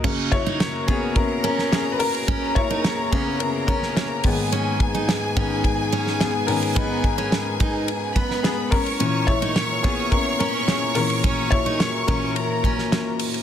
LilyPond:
<<
  \new Staff \with { instrumentName = "Violin section" } { \time 4/4 \key fis \mixolydian \tempo 4 = 107 <ais' ais''>1~ | <ais' ais''>2.~ <ais' ais''>8 <gis' gis''>8~ | <gis' gis''>1~ | <gis' gis''>2~ <gis' gis''>8 <b' b''>4 <cis'' cis'''>8~ |
<cis'' cis'''>1~ | <cis'' cis'''>2 <ais' ais''>4. r8 | }
  \new Staff \with { instrumentName = "Glass harmonica" } { \time 4/4 \key fis \mixolydian << { <ais cis''>1~ | <ais cis''>2.~ <ais cis''>8 <gis b'>8~ | <gis b'>1~ | <gis b'>2.~ <gis b'>8 <ais cis''>8~ |
<ais cis''>1~ | <ais cis''>1 | } \\ { fis'1 | gis'2.~ gis'8 dis'8~ | dis'2.~ dis'8 cis'8~ | cis'2.~ cis'8 e'8~ |
e'2.~ e'8 fis'8~ | fis'1 | } >> }
  \new Staff \with { instrumentName = "Steel-string acoustic guitar" } { \time 4/4 \key fis \mixolydian cis'8 r16 dis'16 r8 cis'8 r8 cis'8. r8. | cis'8 r16 dis'16 r8 cis'8 r8 cis'8. r8. | cis'8 r16 dis'16 r8 cis'8 r8 cis'8. r8. | b8 r16 cis'16 r8 dis'8 r8 b8. r8. |
cis'8 r16 dis'16 r8 cis'8 r8 cis'8. r8. | cis'8 r16 dis'16 r8 cis'8 r8 cis'8. r8. | }
  \new Staff \with { instrumentName = "Upright piano" } { \time 4/4 \key fis \mixolydian << { r8 cis''4 gis'8 ais'8 ais'8 gis'16. b'32 ais'8~ | ais'8 cis''4 gis'8 ais'8 ais'4 r8 | r2. gis'8 ais'8 | b'2. gis'8 ais'8~ |
ais'8 cis''4 gis'8 ais'8 ais'8 gis'8 ais'8~ | ais'8 cis''4 ais'4. r4 | } \\ { r8 e'4 b8 cis'8 cis'8 cis'8 cis'8~ | cis'8 e'4 b8 cis'8 cis'4 r8 | r2. b8 cis'8 | dis'2. b8 cis'8~ |
cis'8 e'4 b8 cis'8 cis'8 cis'8 r8 | r8 e'4 r2 r8 | } >> }
  \new Staff \with { instrumentName = "Upright piano" } { \clef bass \time 4/4 \key fis \mixolydian <fis, cis ais>8 r2. r8 | r4. <fis, cis ais>8 r4. <gis, dis b>8~ | <gis, dis b>4 r8 <gis, dis b>8 r4. <gis, dis b>8~ | <gis, dis b>2.~ <gis, dis b>8 r8 |
<ais, e cis'>4. r2 <ais, e cis'>8~ | <ais, e cis'>4 r8 <ais, e cis'>8 r2 | }
  \new DrumStaff \with { instrumentName = "Drums" } \drummode { \time 4/4 <cymc bd>8 <bd cymr>8 <cymr sn>8 <bd cymr>8 <bd cymr>8 cymr16 sn16 <cymr sn>8 <hho cymr>16 cymr16 | <bd cymr>8 <bd cymr>16 cymr16 <cymr sn>8 <bd cymr>8 cymr8 <bd cymr>16 sn16 <cymr sn>8 <hho bd cymr>8 | <hhp cymr>8 <bd cymr>8 <cymr sn>8 <bd cymr>8 <bd cymr>8 cymr16 sn16 <cymr sn>8 <hho cymr>16 cymr16 | <hhp bd cymr>8 <bd cymr>16 cymr16 <cymr sn>8 <bd cymr>8 cymr8 <bd cymr>16 sn16 <cymr sn>8 <hho bd cymr>16 cymr16 |
<hhp cymr>8 <bd cymr>16 cymr16 <cymr sn>8 <bd cymr>8 <bd cymr>8 cymr8 <cymr sn>8 <hho cymr>16 cymr16 | <bd cymr>8 <bd cymr>16 cymr16 <cymr sn>8 <bd cymr>8 cymr8 <bd cymr>16 sn16 <cymr sn>8 <hho cymr>16 cymr16 | }
>>